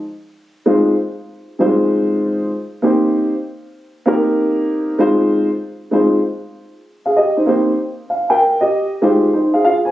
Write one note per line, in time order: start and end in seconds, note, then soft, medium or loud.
0.66 0.91 G#3 medium
0.66 0.91 C4 medium
0.66 0.92 D#4 medium
0.66 0.92 F4 medium
0.66 0.92 C5 medium
1.59 1.68 G3 medium
1.59 2.48 C4 medium
1.59 2.49 D#4 medium
1.59 2.49 F4 medium
1.59 2.49 C5 medium
1.65 2.51 G#3 medium
2.82 3.30 A#3 medium
2.82 3.31 C4 medium
2.82 3.31 D#4 medium
2.82 3.31 G4 medium
2.82 3.31 C5 medium
4.06 4.95 A#3 medium
4.06 4.96 C4 medium
4.06 4.96 D#4 medium
4.06 4.96 G4 medium
4.06 4.96 A#4 medium
4.99 5.47 G#3 medium
4.99 5.47 C4 medium
4.99 5.47 D#4 medium
4.99 5.47 F4 medium
4.99 5.48 C5 loud
5.91 6.17 G#3 medium
5.91 6.17 C4 medium
5.91 6.17 D#4 medium
5.91 6.18 F4 medium
5.91 6.18 C5 medium
7.06 7.17 G#4 soft
7.06 7.16 F5 medium
7.17 7.36 G4 medium
7.17 7.36 D#5 medium
7.37 7.46 D#4 medium
7.37 7.47 C5 medium
7.46 7.72 A#3 medium
7.46 7.72 C4 medium
7.46 7.72 D#4 medium
7.46 7.73 G4 medium
7.46 7.73 C5 medium
8.10 8.29 F5 medium
8.30 8.60 A#4 medium
8.30 8.59 G5 medium
8.61 8.91 G4 medium
8.61 8.90 D#5 medium
9.02 9.27 G#3 medium
9.02 9.27 D#4 medium
9.02 9.27 F4 medium
9.02 9.27 G4 medium
9.02 9.27 C5 medium
9.34 9.53 D#4 medium
9.34 9.53 C5 medium
9.54 9.83 G#4 soft
9.54 9.63 F5 medium
9.64 9.72 F4 medium
9.64 9.71 F5 medium
9.85 9.91 C5 medium
9.85 9.91 G#5 medium